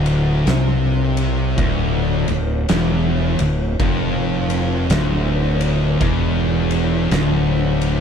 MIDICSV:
0, 0, Header, 1, 4, 480
1, 0, Start_track
1, 0, Key_signature, -1, "minor"
1, 0, Tempo, 1107011
1, 1644, Time_signature, 4, 2, 24, 8
1, 3471, End_track
2, 0, Start_track
2, 0, Title_t, "Distorted electric guitar"
2, 0, Program_c, 0, 30
2, 0, Note_on_c, 0, 38, 99
2, 197, Note_off_c, 0, 38, 0
2, 205, Note_on_c, 0, 48, 115
2, 680, Note_off_c, 0, 48, 0
2, 686, Note_on_c, 0, 38, 109
2, 980, Note_off_c, 0, 38, 0
2, 992, Note_on_c, 0, 38, 77
2, 1131, Note_off_c, 0, 38, 0
2, 1170, Note_on_c, 0, 40, 113
2, 1462, Note_off_c, 0, 40, 0
2, 1475, Note_on_c, 0, 38, 72
2, 1612, Note_off_c, 0, 38, 0
2, 1649, Note_on_c, 0, 41, 92
2, 2121, Note_off_c, 0, 41, 0
2, 2128, Note_on_c, 0, 38, 114
2, 2608, Note_off_c, 0, 38, 0
2, 2608, Note_on_c, 0, 40, 118
2, 3079, Note_off_c, 0, 40, 0
2, 3084, Note_on_c, 0, 38, 117
2, 3471, Note_off_c, 0, 38, 0
2, 3471, End_track
3, 0, Start_track
3, 0, Title_t, "Fingered electric bass"
3, 0, Program_c, 1, 33
3, 0, Note_on_c, 1, 26, 92
3, 183, Note_off_c, 1, 26, 0
3, 201, Note_on_c, 1, 36, 97
3, 666, Note_off_c, 1, 36, 0
3, 684, Note_on_c, 1, 26, 114
3, 971, Note_off_c, 1, 26, 0
3, 992, Note_on_c, 1, 26, 87
3, 1154, Note_off_c, 1, 26, 0
3, 1169, Note_on_c, 1, 28, 95
3, 1454, Note_off_c, 1, 28, 0
3, 1472, Note_on_c, 1, 26, 81
3, 1634, Note_off_c, 1, 26, 0
3, 1645, Note_on_c, 1, 29, 91
3, 2107, Note_off_c, 1, 29, 0
3, 2123, Note_on_c, 1, 26, 95
3, 2585, Note_off_c, 1, 26, 0
3, 2604, Note_on_c, 1, 28, 114
3, 3065, Note_off_c, 1, 28, 0
3, 3081, Note_on_c, 1, 26, 109
3, 3471, Note_off_c, 1, 26, 0
3, 3471, End_track
4, 0, Start_track
4, 0, Title_t, "Drums"
4, 25, Note_on_c, 9, 51, 82
4, 69, Note_off_c, 9, 51, 0
4, 203, Note_on_c, 9, 51, 97
4, 207, Note_on_c, 9, 38, 114
4, 246, Note_off_c, 9, 51, 0
4, 250, Note_off_c, 9, 38, 0
4, 507, Note_on_c, 9, 51, 82
4, 551, Note_off_c, 9, 51, 0
4, 684, Note_on_c, 9, 36, 99
4, 684, Note_on_c, 9, 51, 103
4, 727, Note_off_c, 9, 51, 0
4, 728, Note_off_c, 9, 36, 0
4, 987, Note_on_c, 9, 51, 75
4, 1031, Note_off_c, 9, 51, 0
4, 1165, Note_on_c, 9, 51, 109
4, 1169, Note_on_c, 9, 38, 112
4, 1208, Note_off_c, 9, 51, 0
4, 1212, Note_off_c, 9, 38, 0
4, 1469, Note_on_c, 9, 51, 85
4, 1513, Note_off_c, 9, 51, 0
4, 1646, Note_on_c, 9, 36, 103
4, 1646, Note_on_c, 9, 51, 103
4, 1690, Note_off_c, 9, 36, 0
4, 1690, Note_off_c, 9, 51, 0
4, 1951, Note_on_c, 9, 51, 85
4, 1994, Note_off_c, 9, 51, 0
4, 2124, Note_on_c, 9, 51, 126
4, 2128, Note_on_c, 9, 38, 115
4, 2167, Note_off_c, 9, 51, 0
4, 2172, Note_off_c, 9, 38, 0
4, 2431, Note_on_c, 9, 51, 87
4, 2474, Note_off_c, 9, 51, 0
4, 2605, Note_on_c, 9, 36, 101
4, 2605, Note_on_c, 9, 51, 116
4, 2648, Note_off_c, 9, 36, 0
4, 2648, Note_off_c, 9, 51, 0
4, 2908, Note_on_c, 9, 51, 78
4, 2951, Note_off_c, 9, 51, 0
4, 3084, Note_on_c, 9, 51, 92
4, 3088, Note_on_c, 9, 38, 101
4, 3127, Note_off_c, 9, 51, 0
4, 3132, Note_off_c, 9, 38, 0
4, 3388, Note_on_c, 9, 51, 84
4, 3432, Note_off_c, 9, 51, 0
4, 3471, End_track
0, 0, End_of_file